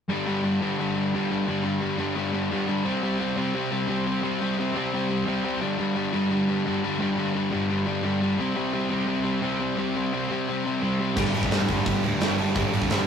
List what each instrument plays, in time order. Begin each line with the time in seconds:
0.09 overdriven electric guitar G2 D3 G3
0.26 overdriven electric guitar G2 D3 G3
0.43 overdriven electric guitar G2 D3 G3
0.61 overdriven electric guitar G2 D3 G3
0.78 overdriven electric guitar G2 D3 G3
0.95 overdriven electric guitar G2 D3 G3
1.14 overdriven electric guitar G2 D3 G3
1.30 overdriven electric guitar G2 D3 G3
1.47 overdriven electric guitar G2 D3 G3
1.64 overdriven electric guitar G2 D3 G3
1.81 overdriven electric guitar G2 D3 G3
1.98 overdriven electric guitar G2 D3 G3
2.16 overdriven electric guitar G2 D3 G3
2.33 overdriven electric guitar G2 D3 G3
2.52 overdriven electric guitar G2 D3 G3
2.68 overdriven electric guitar G2 D3 G3
2.85 overdriven electric guitar C3 G3 C4
3.03 overdriven electric guitar C3 G3 C4
3.19 overdriven electric guitar C3 G3 C4
3.37 overdriven electric guitar C3 G3 C4
3.54 overdriven electric guitar C3 G3 C4
3.71 overdriven electric guitar C3 G3 C4
3.88 overdriven electric guitar C3 G3 C4
4.06 overdriven electric guitar C3 G3 C4
4.23 overdriven electric guitar C3 G3 C4
4.41 overdriven electric guitar C3 G3 C4
4.58 overdriven electric guitar C3 G3 C4
4.72 overdriven electric guitar C3, distorted electric guitar C4
4.76 overdriven electric guitar G3 C4
4.94 overdriven electric guitar C3 G3 C4
5.09 overdriven electric guitar C3 G3 C4
5.28 overdriven electric guitar C3 G3 C4
5.44 overdriven electric guitar C3 G3 C4
5.61 overdriven electric guitar G2 D3 G3
5.78 overdriven electric guitar G2 D3 G3
5.95 overdriven electric guitar G2 D3 G3
6.13 overdriven electric guitar G2 D3 G3
6.30 overdriven electric guitar G2 D3 G3
6.48 overdriven electric guitar G2 D3 G3
6.65 overdriven electric guitar G2 D3 G3
6.83 overdriven electric guitar G2 D3 G3
7.00 overdriven electric guitar G2 D3 G3
7.17 overdriven electric guitar G2 D3 G3
7.35 overdriven electric guitar G2 D3 G3
7.52 overdriven electric guitar G2 D3 G3
7.70 overdriven electric guitar G2 D3 G3
7.86 overdriven electric guitar G2 D3 G3
8.04 overdriven electric guitar G2 D3 G3
8.21 overdriven electric guitar G2 D3 G3
8.39 overdriven electric guitar C3 G3 C4
8.56 overdriven electric guitar C3 G3 C4
8.73 overdriven electric guitar C3 G3 C4
8.90 overdriven electric guitar C3 G3 C4
9.07 overdriven electric guitar C3 G3 C4
9.24 overdriven electric guitar C3 G3 C4
9.41 overdriven electric guitar C3 G3 C4
9.59 overdriven electric guitar C3 G3 C4
9.78 overdriven electric guitar C3 G3 C4
9.95 overdriven electric guitar C3 G3 C4
10.13 overdriven electric guitar C3 G3 C4
10.31 overdriven electric guitar C3 G3 C4
10.48 overdriven electric guitar C3 G3 C4
10.65 overdriven electric guitar C3 G3 C4
10.83 overdriven electric guitar C3 G3 C4
11.00 overdriven electric guitar C3 G3 C4
11.16 picked electric bass G1, overdriven electric guitar G2 D3 G3, kick, crash
11.34 picked electric bass G1, overdriven electric guitar G2 D3 G3, open hi-hat
11.43 kick
11.51 picked electric bass G1, overdriven electric guitar G2 D3 G3, snare, open hi-hat
11.67 picked electric bass G1, overdriven electric guitar G2 D3, distorted electric guitar G3, kick, open hi-hat
11.71 overdriven electric guitar G3
11.86 picked electric bass G1, overdriven electric guitar G2 D3 G3, kick, open hi-hat
12.03 picked electric bass D2, overdriven electric guitar G2 D3 G3, open hi-hat
12.20 picked electric bass G1, overdriven electric guitar G2 D3 G3, snare, open hi-hat
12.38 overdriven electric guitar G2 D3 G3, open hi-hat
12.55 picked electric bass G1, overdriven electric guitar G2 D3 G3, kick, open hi-hat
12.72 picked electric bass G1, overdriven electric guitar G2 D3 G3, open hi-hat
12.82 kick
12.90 picked electric bass G1, overdriven electric guitar G2 D3 G3, snare, open hi-hat